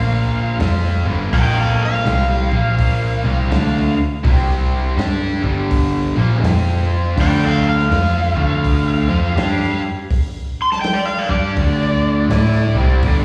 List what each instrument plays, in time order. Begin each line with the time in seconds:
Already playing: picked electric bass A#1, overdriven electric guitar A#2 F3 A#3, electric slide guitar F5
0.59 picked electric bass F2, overdriven electric guitar F3 C4 F4, snare, open hi-hat
0.84 snare
1.05 picked electric bass G1, overdriven electric guitar G2 D3 G3
1.33 picked electric bass A#1, overdriven electric guitar A#2 F3 A#3, electric slide guitar A#4 G5, kick, open hi-hat
1.61 electric slide guitar A4 F5
1.85 electric slide guitar F5
1.93 snare
2.05 picked electric bass C2, overdriven electric guitar C3 G3 C4, snare, open hi-hat
2.51 picked electric bass A#1, overdriven electric guitar A#2 F3 A#3, kick
2.78 kick, open hi-hat
3.24 picked electric bass C2, overdriven electric guitar C3 G3 C4
3.51 picked electric bass D2, overdriven electric guitar D3 A3 D4, snare, open hi-hat
4.24 picked electric bass C2, overdriven electric guitar C3 G3 C4, kick, open hi-hat
4.97 picked electric bass G2, overdriven electric guitar G3 D4 G4, snare, open hi-hat
5.42 picked electric bass G1, overdriven electric guitar G2 D3 G3, kick
5.71 kick, open hi-hat
6.16 picked electric bass A#1, overdriven electric guitar A#2 F3 A#3
6.43 picked electric bass F2, overdriven electric guitar F3 C4 F4, snare, open hi-hat
7.17 picked electric bass D2, overdriven electric guitar D3 A3 D4, electric slide guitar D5, kick, open hi-hat
7.21 electric slide guitar G5
7.45 electric slide guitar A4 F5
7.69 electric slide guitar F5
7.79 snare
7.90 picked electric bass F2, overdriven electric guitar F3 C4 F4, snare, open hi-hat
8.35 picked electric bass D2, overdriven electric guitar D3 A3 D4, kick
8.64 kick, open hi-hat
9.09 picked electric bass F2, overdriven electric guitar F3 C4 F4
9.36 picked electric bass G2, overdriven electric guitar G3 D4 G4, snare, open hi-hat
9.62 snare
10.11 kick, open hi-hat
10.62 electric slide guitar C6
10.72 electric slide guitar A5, snare
10.81 electric slide guitar G5, snare, open hi-hat
10.93 electric slide guitar D5
11.05 electric slide guitar F5
11.19 electric slide guitar D5
11.29 picked electric bass G2, overdriven electric guitar G3 D4 G4, electric slide guitar D5, kick
11.57 picked electric bass D2, overdriven electric guitar D3 A3 D4, kick, open hi-hat
12.29 picked electric bass A2, overdriven electric guitar A3 E4 A4, snare, open hi-hat
12.55 snare
12.75 picked electric bass C2, overdriven electric guitar C3 G3 C4
13.03 picked electric bass G1, overdriven electric guitar G2 D3 G3, kick, open hi-hat